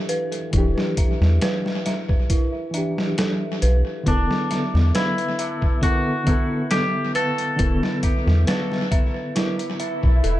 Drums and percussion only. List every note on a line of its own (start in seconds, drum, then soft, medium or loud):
0.09 closed hi-hat medium
0.32 closed hi-hat soft
0.53 kick medium
0.53 closed hi-hat medium
0.78 snare medium
0.97 kick medium
0.97 closed hi-hat medium
1.22 snare soft
1.41 snare loud
1.41 closed hi-hat medium
1.66 snare soft
1.86 snare soft
1.86 closed hi-hat medium
2.09 kick medium
2.30 kick medium
2.30 closed hi-hat medium
2.74 closed hi-hat medium
2.98 snare medium
3.18 snare loud
3.18 closed hi-hat medium
3.62 closed hi-hat medium
4.06 kick loud
4.06 closed hi-hat medium
4.31 snare soft
4.51 snare soft
4.51 closed hi-hat medium
4.75 snare soft
4.95 snare loud
4.95 closed hi-hat medium
5.18 closed hi-hat soft
5.39 closed hi-hat medium
5.62 kick medium
5.83 kick loud
5.83 closed hi-hat medium
6.27 kick loud
6.27 closed hi-hat medium
6.71 snare loud
6.71 closed hi-hat medium
7.15 closed hi-hat medium
7.38 closed hi-hat soft
7.59 kick loud
7.59 closed hi-hat medium
7.83 snare medium
8.03 kick medium
8.03 closed hi-hat medium
8.28 snare soft
8.47 snare loud
8.47 closed hi-hat medium
8.72 snare soft
8.92 kick loud
8.92 closed hi-hat medium
9.36 snare medium
9.36 closed hi-hat medium
9.59 closed hi-hat soft
9.80 closed hi-hat medium
10.03 kick medium
10.24 closed hi-hat medium